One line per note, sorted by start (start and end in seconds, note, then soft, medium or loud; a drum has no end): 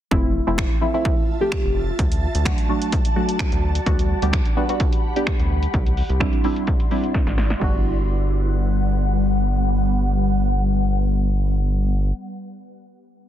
0.11 0.40 F1 loud
0.11 0.30 F3 loud
0.11 0.30 A3 medium
0.11 0.30 C4 medium
0.11 0.30 E4 loud
0.11 1.97 F4 medium
0.11 1.97 E5 medium
0.11 3.83 A5 medium
0.11 kick loud
0.47 0.66 F1 medium
0.47 0.66 F3 medium
0.47 0.66 A3 medium
0.47 0.66 C4 medium
0.47 0.66 E4 loud
0.58 finger snap loud
0.58 kick loud
0.81 0.88 F3 medium
0.81 0.88 A3 medium
0.81 0.88 C4 medium
0.81 0.88 E4 loud
0.94 1.19 F3 medium
0.94 1.19 A3 medium
0.94 1.19 C4 medium
0.94 1.19 E4 loud
1.05 kick loud
1.41 1.91 F3 medium
1.41 1.91 A3 medium
1.41 1.91 C4 medium
1.41 1.91 G4 medium
1.52 finger snap loud
1.52 kick loud
1.65 1.92 F1 medium
1.99 2.28 D2 loud
1.99 3.85 F#4 medium
1.99 3.85 D5 medium
1.99 kick loud
1.99 closed hi-hat medium
2.12 closed hi-hat medium
2.35 2.54 D2 medium
2.35 closed hi-hat soft
2.45 2.59 F#3 medium
2.45 2.59 A3 medium
2.45 2.59 D4 medium
2.45 2.59 F#4 loud
2.45 finger snap loud
2.45 kick loud
2.45 closed hi-hat medium
2.58 closed hi-hat soft
2.69 2.94 F#3 medium
2.69 2.94 A3 medium
2.69 2.94 D4 medium
2.69 2.94 F#4 medium
2.82 closed hi-hat medium
2.92 kick loud
2.92 closed hi-hat medium
3.05 closed hi-hat medium
3.16 3.54 F#3 medium
3.16 3.54 A3 medium
3.16 3.54 D4 medium
3.16 3.54 F#4 medium
3.29 closed hi-hat medium
3.39 finger snap loud
3.39 kick loud
3.39 closed hi-hat medium
3.52 3.80 D2 medium
3.52 closed hi-hat soft
3.75 closed hi-hat medium
3.86 4.15 D2 medium
3.86 4.05 G3 loud
3.86 4.05 B3 medium
3.86 4.05 D4 medium
3.86 4.06 F#4 loud
3.86 5.72 G4 medium
3.86 5.72 F#5 medium
3.86 5.72 B5 medium
3.86 kick loud
3.86 closed hi-hat medium
3.99 closed hi-hat medium
4.22 4.41 D2 medium
4.22 4.41 G3 medium
4.22 4.41 B3 medium
4.22 4.41 D4 medium
4.22 4.41 G4 loud
4.22 closed hi-hat soft
4.33 finger snap loud
4.33 kick loud
4.33 closed hi-hat medium
4.45 closed hi-hat soft
4.57 4.63 G3 loud
4.57 4.63 B3 medium
4.57 4.63 D4 medium
4.57 4.64 F#4 loud
4.69 4.94 G3 medium
4.69 4.94 B3 medium
4.69 4.94 D4 medium
4.69 4.94 F#4 loud
4.69 closed hi-hat soft
4.80 kick loud
4.80 closed hi-hat medium
4.93 closed hi-hat medium
5.16 5.66 G3 medium
5.16 5.66 B3 medium
5.16 5.66 D4 medium
5.16 5.66 G4 loud
5.16 closed hi-hat medium
5.27 finger snap loud
5.27 kick loud
5.27 closed hi-hat medium
5.39 5.67 D2 medium
5.39 closed hi-hat soft
5.63 closed hi-hat medium
5.74 6.03 C2 loud
5.74 7.59 E4 medium
5.74 7.59 D5 medium
5.74 7.59 C6 medium
5.74 kick loud
5.74 closed hi-hat medium
5.86 closed hi-hat medium
5.97 open hi-hat medium
6.09 6.28 C2 medium
6.09 closed hi-hat soft
6.20 6.34 G3 medium
6.20 6.34 C4 medium
6.20 6.34 D4 medium
6.20 6.34 E4 loud
6.20 finger snap loud
6.20 kick loud
6.20 closed hi-hat medium
6.33 closed hi-hat medium
6.44 6.69 G3 medium
6.44 6.69 C4 medium
6.44 6.69 D4 medium
6.44 6.69 E4 loud
6.44 open hi-hat medium
6.56 closed hi-hat medium
6.67 kick loud
6.67 closed hi-hat medium
6.80 closed hi-hat medium
6.91 7.29 G3 medium
6.91 7.29 C4 medium
6.91 7.29 D4 medium
6.91 7.29 E4 medium
6.91 open hi-hat medium
7.04 closed hi-hat medium
7.14 kick loud
7.14 snare medium
7.14 closed hi-hat medium
7.27 7.55 G#1 medium
7.27 snare medium
7.27 closed hi-hat soft
7.38 snare medium
7.38 open hi-hat medium
7.50 snare medium
7.50 closed hi-hat medium
7.59 12.12 G1 loud
7.59 12.35 G3 medium
7.59 12.13 G3 medium
7.59 12.36 B3 medium
7.59 12.12 B3 medium
7.59 12.38 D4 medium
7.59 12.39 F#4 loud
7.59 12.12 F#5 medium
7.59 kick loud
7.59 crash medium